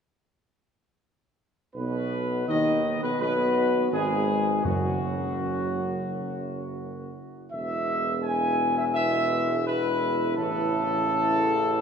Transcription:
1.74 B1 B2 B3 B4
2.48 D#2 D#3 D#4 D#5
3.02 B1 B2 B3 B4
3.20 B1 B2 B3 B4
3.93 G#1 G#2 G#3 G#4
4.64 F#1 F#2 F#3 F#4
7.52 E1 B2 G#3 B3 E4 E5
8.24 G#5
8.77 E5
8.95 E5
9.66 B4
10.37 A1 C#3 E3 A3 A4

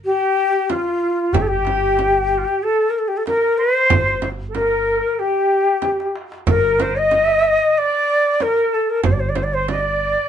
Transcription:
0.05 G4
0.70 F4, darbuka tek, frame drum
0.76 F4
0.85 F4, darbuka ka
0.94 F4
1.01 F4, darbuka ka
1.09 F4
1.22 F4
1.33 G1 G4, darbuka dum, frame drum
1.42 A4
1.47 G4
1.65 darbuka tek, frame drum
1.81 darbuka ka
1.97 darbuka tek, frame drum
2.31 G4
2.38 F4
2.45 G4
2.63 A4
2.90 A#4
2.99 A4
3.08 G4
3.17 A4
3.26 A#4, darbuka tek, frame drum
3.43 darbuka ka
3.58 C5, darbuka ka
3.67 C5
3.73 C5
3.82 C5
3.90 G1 C5, frame drum, darbuka dum
3.98 C5
4.03 C5
4.11 C5
4.22 darbuka tek, frame drum
4.40 darbuka ka
4.49 A4
4.54 A#4, darbuka tek, frame drum
4.88 darbuka ka
5.19 G4, darbuka ka
5.51 darbuka ka
5.82 darbuka tek, frame drum
6.00 darbuka ka
6.16 darbuka tek
6.32 darbuka ka
6.47 G1 A#4, frame drum, darbuka dum
6.79 C5, darbuka tek, frame drum
6.95 D#5, darbuka ka
7.11 darbuka tek, frame drum
7.45 darbuka ka
7.69 D#5
7.77 D5
8.40 A#4, darbuka tek, frame drum
8.57 darbuka ka
8.72 A4, darbuka ka
8.90 A#4
9.03 G1 C5, frame drum, darbuka dum
9.12 D5
9.20 C5
9.29 D5
9.35 C5, darbuka tek, frame drum
9.43 D5
9.53 C5, darbuka ka
9.68 D5, darbuka tek, frame drum
9.73 D#5
9.81 D5
10.01 darbuka ka

